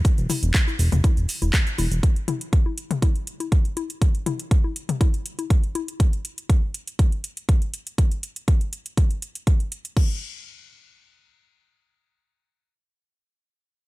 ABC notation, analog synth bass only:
X:1
M:4/4
L:1/16
Q:1/4=121
K:Clyd
V:1 name="Analog synth bass" clef=bass
z E,,, z E,,, z2 E,,, E,,, z E,,, z E,,, z2 E,,, E,,, | z16 | z16 | z16 |
z16 | z16 | z16 |]